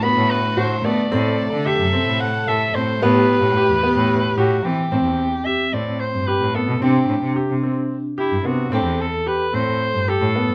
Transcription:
0.00 1.09 D3 medium
0.00 2.98 A3 medium
0.00 0.34 B3 medium
0.00 1.08 F#4 medium
0.00 1.09 F#4 medium
0.00 0.32 B5 loud
0.17 0.37 A2 medium
0.30 0.59 B4 medium
0.57 0.78 A2 medium
0.57 0.73 F#4 medium
0.57 0.86 C5 medium
0.84 0.95 A3 medium
0.84 1.00 B3 medium
0.84 1.67 D5 medium
1.11 1.43 A2 loud
1.11 3.00 C3 medium
1.11 1.43 C4 medium
1.11 2.99 A4 medium
1.11 2.98 A4 loud
1.54 1.74 D3 medium
1.66 1.82 G4 medium
1.66 2.21 E5 medium
1.80 2.01 F#2 medium
1.93 2.25 C4 medium
2.07 2.28 A2 medium
2.20 2.50 F#5 medium
2.47 2.68 A2 medium
2.47 2.64 A4 medium
2.47 2.77 E5 medium
2.75 2.85 A2 medium
2.75 2.91 C4 medium
2.75 3.02 C5 medium
3.01 3.33 A2 loud
3.01 4.90 B2 medium
3.01 4.90 A3 medium
3.01 3.34 B3 loud
3.01 4.61 G4 medium
3.01 4.90 G4 medium
3.01 4.34 B4 medium
3.42 3.53 A2 medium
3.57 3.72 G4 medium
3.69 3.80 E2 medium
3.83 4.15 B3 medium
3.96 4.17 A2 medium
4.37 4.58 A2 medium
4.37 4.66 F#4 medium
4.37 4.53 G4 medium
4.64 4.75 E3 medium
4.64 4.81 C4 medium
4.64 5.47 G4 medium
4.92 5.02 A2 medium
4.92 6.88 C4 medium
4.92 5.24 C4 medium
5.05 5.26 E2 medium
5.46 5.62 G4 medium
5.46 5.75 E5 medium
5.73 5.94 A2 medium
5.73 6.05 C4 medium
5.73 6.01 D5 medium
6.00 6.29 C5 medium
6.14 6.25 G2 medium
6.27 6.44 G4 medium
6.27 6.56 B4 medium
6.41 6.52 A2 medium
6.55 6.71 B3 medium
6.55 6.82 A4 medium
6.68 6.79 B2 medium
6.82 7.03 C3 medium
6.82 7.14 C4 medium
6.82 8.78 D4 medium
6.82 7.33 G4 medium
7.08 7.19 A2 medium
7.22 7.33 C3 medium
7.36 7.52 G4 medium
7.50 7.71 C3 medium
7.63 7.95 C4 medium
8.18 8.48 E4 medium
8.18 8.34 G4 medium
8.32 8.42 G2 medium
8.45 8.66 C3 medium
8.45 8.61 B3 medium
8.45 8.73 F#4 medium
8.72 8.83 A2 loud
8.72 9.04 C4 medium
8.72 9.03 G4 medium
8.72 10.55 A4 loud
8.86 9.07 E2 medium
9.01 9.29 A4 medium
9.26 9.42 G4 medium
9.26 9.56 B4 medium
9.53 9.74 A2 medium
9.53 9.85 C4 medium
9.53 10.10 C5 loud
9.94 10.05 G2 medium
10.08 10.24 G4 medium
10.08 10.55 A4 medium
10.22 10.32 A2 medium
10.36 10.51 B3 medium
10.48 10.55 G2 medium

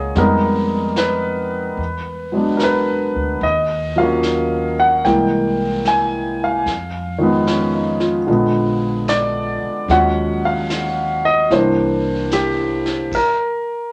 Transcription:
0.00 0.11 C#2 medium
0.00 0.16 F3 soft
0.00 0.15 G#3 soft
0.00 0.17 A#3 soft
0.00 0.17 C#4 soft
0.00 0.20 G#4 medium
0.00 0.18 C#5 medium
0.00 0.18 D#5 medium
0.15 1.74 F2 medium
0.15 1.79 G3 soft
0.15 1.79 G#3 soft
0.15 1.79 B3 soft
0.15 1.80 D#4 soft
0.15 1.01 A#4 medium
0.15 brush sweep soft
0.15 snare soft
0.96 2.52 B4 medium
0.96 snare soft
0.96 hi-hat pedal soft
1.77 3.11 E2 medium
1.77 brush sweep soft
2.32 3.42 F#3 soft
2.32 3.43 G#3 soft
2.32 3.43 B3 soft
2.37 3.44 D4 soft
2.57 2.61 A#4 soft
2.57 snare soft
2.57 hi-hat pedal soft
2.63 3.40 B4 medium
3.15 3.40 D2 soft
3.41 5.00 D#2 medium
3.41 3.99 D#5 medium
3.41 brush sweep soft
3.96 5.05 F3 soft
3.96 5.05 F#3 soft
3.96 5.05 A#3 soft
3.96 4.75 F5 medium
4.02 5.07 C#4 soft
4.23 snare soft
4.23 hi-hat pedal soft
4.80 5.07 F#5 medium
5.05 6.63 C2 medium
5.05 6.67 E3 soft
5.05 6.67 G3 soft
5.05 6.68 G#3 soft
5.05 6.68 A#3 soft
5.05 5.88 G5 medium
5.05 brush sweep soft
5.05 snare soft
5.85 6.37 G#5 medium
5.85 snare soft
5.85 hi-hat pedal soft
6.44 8.80 F5 medium
6.66 8.23 F2 medium
6.66 brush sweep soft
6.66 snare soft
7.18 8.26 D#3 soft
7.18 8.26 F3 soft
7.18 8.28 G#3 soft
7.24 8.29 B3 medium
7.47 7.97 C#4 soft
7.47 snare soft
7.47 hi-hat pedal soft
7.74 8.16 D#4 soft
8.00 8.42 F4 soft
8.00 snare soft
8.27 9.59 A#1 medium
8.27 9.89 D3 soft
8.27 9.89 F3 soft
8.27 9.89 G#3 soft
8.27 brush sweep soft
8.31 9.91 B3 soft
9.08 9.92 D5 medium
9.08 snare soft
9.08 hi-hat pedal soft
9.63 muted upright bass stroke soft
9.88 11.46 D#2 medium
9.88 11.51 F3 soft
9.88 11.51 F#3 soft
9.88 11.51 G#3 soft
9.88 11.52 C#4 soft
9.88 10.40 F#5 medium
9.88 brush sweep soft
9.88 snare soft
10.45 11.21 F5 medium
10.70 snare soft
10.70 hi-hat pedal soft
11.25 11.49 D#5 medium
11.50 13.08 C2 medium
11.50 13.12 E3 soft
11.50 13.12 G3 soft
11.50 13.12 A#3 soft
11.50 13.13 D4 soft
11.50 12.34 C5 medium
11.50 brush sweep soft
11.50 snare soft
12.31 13.15 G4 medium
12.31 snare soft
12.31 hi-hat pedal soft
12.85 snare soft
13.12 13.91 A#4 medium
13.12 kick medium
13.12 crash soft

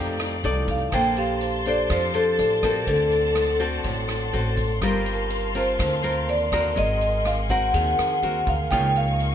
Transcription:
0.00 0.45 F2 loud
0.00 0.90 F3 medium
0.00 0.91 A3 medium
0.00 0.39 D#4 medium
0.00 0.90 D#4 medium
0.00 0.90 G4 medium
0.00 0.40 A4 medium
0.00 0.40 D5 medium
0.00 0.91 D5 medium
0.00 0.16 G5 medium
0.20 cross-stick medium
0.20 closed hi-hat soft
0.44 0.89 C2 medium
0.44 0.89 D#4 medium
0.44 0.89 A4 medium
0.44 0.89 D5 medium
0.44 closed hi-hat soft
0.68 0.92 F5 medium
0.68 kick medium
0.68 closed hi-hat soft
0.92 1.86 A#1 medium
0.92 1.87 A#3 medium
0.92 1.61 D4 medium
0.92 1.62 A4 medium
0.92 2.85 C5 medium
0.92 1.62 C5 medium
0.92 4.78 D5 medium
0.92 1.18 G5 loud
0.92 4.77 A5 medium
0.92 2.85 C6 medium
0.92 kick soft
0.92 cross-stick medium
0.92 closed hi-hat medium
1.17 2.89 G4 medium
1.17 1.67 F5 medium
1.17 closed hi-hat soft
1.41 2.86 C5 soft
1.41 closed hi-hat soft
1.65 2.10 D4 medium
1.65 2.11 A4 medium
1.65 2.11 C5 medium
1.65 1.89 D5 medium
1.65 closed hi-hat soft
1.90 2.40 F2 medium
1.90 2.85 F3 medium
1.90 2.03 C5 medium
1.90 kick medium
1.90 cross-stick medium
1.90 closed hi-hat medium
2.14 2.59 D4 medium
2.14 2.59 A4 medium
2.14 2.64 A4 medium
2.14 2.59 C5 medium
2.14 closed hi-hat soft
2.39 2.87 A1 medium
2.39 3.08 D5 medium
2.39 closed hi-hat soft
2.63 3.56 C4 medium
2.63 3.56 F#4 medium
2.63 3.57 A4 medium
2.63 2.89 A#4 medium
2.63 kick medium
2.63 cross-stick medium
2.63 closed hi-hat soft
2.87 3.80 D2 medium
2.87 3.82 D3 medium
2.87 3.12 A4 medium
2.87 4.59 C5 soft
2.87 4.80 F#5 medium
2.87 8.67 C6 medium
2.87 kick medium
2.87 closed hi-hat medium
3.11 3.58 A4 medium
3.11 closed hi-hat soft
3.35 cross-stick medium
3.35 closed hi-hat soft
3.59 4.29 C4 medium
3.59 4.29 F#4 medium
3.59 4.29 A4 medium
3.59 closed hi-hat soft
3.84 4.29 A1 medium
3.84 4.79 A2 medium
3.84 kick medium
3.84 closed hi-hat medium
4.08 cross-stick medium
4.08 closed hi-hat soft
4.33 4.81 A1 medium
4.33 4.64 C4 medium
4.33 4.64 F#4 medium
4.33 4.65 A4 medium
4.33 closed hi-hat soft
4.57 kick medium
4.57 closed hi-hat soft
4.81 5.75 G1 loud
4.81 5.77 G3 medium
4.81 5.51 C4 medium
4.81 5.51 F4 medium
4.81 9.35 A#4 medium
4.81 5.51 A#4 medium
4.81 6.74 F5 medium
4.81 6.74 A5 medium
4.81 kick medium
4.81 cross-stick medium
4.81 closed hi-hat medium
4.86 5.58 A#4 medium
5.06 closed hi-hat soft
5.30 6.97 A#4 soft
5.30 closed hi-hat soft
5.55 5.99 C4 medium
5.55 5.99 F4 medium
5.55 5.99 A#4 medium
5.55 6.31 C5 medium
5.55 closed hi-hat soft
5.79 6.28 D2 medium
5.79 6.73 D3 medium
5.79 kick medium
5.79 cross-stick medium
5.79 closed hi-hat medium
6.03 6.48 C4 medium
6.03 6.48 F4 medium
6.03 6.48 A#4 medium
6.03 closed hi-hat soft
6.28 6.78 D#2 medium
6.28 6.78 D5 medium
6.28 closed hi-hat soft
6.52 7.45 C4 medium
6.52 7.45 F#4 medium
6.52 7.46 A#4 medium
6.52 kick medium
6.52 cross-stick medium
6.52 closed hi-hat soft
6.76 7.69 G#1 medium
6.76 7.71 G#3 medium
6.76 7.27 D#5 loud
6.76 8.69 F#5 medium
6.76 8.68 G#5 medium
6.76 kick medium
6.76 closed hi-hat medium
7.01 closed hi-hat soft
7.25 7.37 F5 medium
7.25 cross-stick medium
7.25 closed hi-hat soft
7.49 8.18 C4 medium
7.49 8.18 F#4 medium
7.49 8.19 A#4 medium
7.49 8.50 F#5 loud
7.49 kick soft
7.49 closed hi-hat soft
7.74 7.96 D#2 medium
7.74 8.68 D#3 medium
7.74 8.91 G#4 medium
7.74 kick medium
7.74 closed hi-hat medium
7.99 8.20 F2 medium
7.99 cross-stick medium
7.99 closed hi-hat soft
8.23 8.44 D#2 medium
8.23 8.54 C4 medium
8.23 8.54 F#4 medium
8.23 8.54 A#4 medium
8.23 closed hi-hat soft
8.47 8.73 D2 medium
8.47 8.72 F5 medium
8.47 kick medium
8.47 closed hi-hat soft
8.71 9.35 C#2 medium
8.71 9.35 C#3 medium
8.71 9.35 A#3 medium
8.71 9.35 D#4 medium
8.71 9.35 F4 medium
8.71 9.35 D#5 medium
8.71 9.35 F5 medium
8.71 8.95 G5 loud
8.71 9.35 C#6 medium
8.71 kick medium
8.71 cross-stick medium
8.71 closed hi-hat medium
8.96 9.35 F5 medium
8.96 closed hi-hat soft
9.20 closed hi-hat soft

